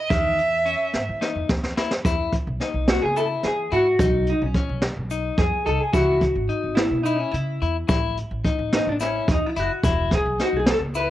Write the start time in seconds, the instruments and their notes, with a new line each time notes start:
Already playing: violin D#5
0.09 upright bass E2, clean electric guitar D#3, violin E5, kick, closed hi-hat
0.38 closed hi-hat
0.66 clean electric guitar C#4, closed hi-hat
0.93 upright bass G#2, snare
1.09 upright bass E3
1.21 clean electric guitar D#4, snare
1.36 upright bass E2
1.49 upright bass E2, kick, snare
1.63 snare
1.77 clean electric guitar E4, snare
1.91 snare
2.05 upright bass E2, clean electric guitar E4, kick, closed hi-hat, shaker
2.32 kick, closed hi-hat
2.47 upright bass B1
2.60 clean electric guitar D#4, snare, closed hi-hat
2.74 upright bass B1
2.88 hollow-body jazz guitar F#4, snare, closed hi-hat
3.02 upright bass C#3, hollow-body jazz guitar G#4
3.16 clean electric guitar E4, hollow-body jazz guitar A4, closed hi-hat, shaker
3.43 upright bass E3, hollow-body jazz guitar G#4, snare, closed hi-hat
3.71 upright bass G#2, clean electric guitar E4, hollow-body jazz guitar F#4, closed hi-hat
3.99 upright bass B1, clean electric guitar D#4, kick, closed hi-hat, shaker
4.26 hollow-body jazz guitar D#4, closed hi-hat
4.42 upright bass B1, hollow-body jazz guitar C#4
4.54 clean electric guitar C#4, kick, closed hi-hat
4.69 upright bass B1
4.82 snare, closed hi-hat
4.97 upright bass B1
5.10 clean electric guitar D#4, closed hi-hat, shaker
5.38 upright bass F#2, hollow-body jazz guitar G#4, kick, snare, closed hi-hat
5.66 upright bass C2, clean electric guitar D#4, hollow-body jazz guitar A4, closed hi-hat
5.80 hollow-body jazz guitar G#4
5.93 upright bass C#2, clean electric guitar E4, hollow-body jazz guitar F#4, kick, closed hi-hat, shaker
6.21 kick, closed hi-hat
6.36 upright bass G#1
6.49 clean electric guitar D#4, closed hi-hat
6.64 upright bass G#1
6.75 hollow-body jazz guitar E4, snare, closed hi-hat
6.91 upright bass B2
7.04 hollow-body jazz guitar D#4, clean electric guitar E4, closed hi-hat, shaker
7.17 hollow-body jazz guitar C#4
7.32 upright bass C#3, hollow-body jazz guitar E4, closed hi-hat
7.62 upright bass E2, clean electric guitar E4, closed hi-hat
7.88 upright bass A1, clean electric guitar E4, kick, closed hi-hat, shaker
8.17 closed hi-hat
8.31 upright bass A1
8.45 clean electric guitar D#4, kick, closed hi-hat
8.59 upright bass A1
8.73 hollow-body jazz guitar D#4, snare, closed hi-hat
8.87 upright bass A1, hollow-body jazz guitar D4
9.00 hollow-body jazz guitar C#4, clean electric guitar E4, snare, closed hi-hat, shaker
9.28 upright bass E2, hollow-body jazz guitar D#4, kick, closed hi-hat
9.46 hollow-body jazz guitar E4
9.56 upright bass F#1, clean electric guitar E4, hollow-body jazz guitar F#4, closed hi-hat, shaker
9.83 upright bass E1, clean electric guitar E4, kick, closed hi-hat, shaker
10.11 hollow-body jazz guitar G#4, kick, snare, closed hi-hat
10.26 upright bass B1
10.39 clean electric guitar D#4, hollow-body jazz guitar F#4, snare, closed hi-hat
10.53 upright bass B1, hollow-body jazz guitar G#4
10.66 snare, closed hi-hat
10.71 hollow-body jazz guitar A4
10.80 upright bass C#2
10.95 clean electric guitar E4, hollow-body jazz guitar B4, closed hi-hat, shaker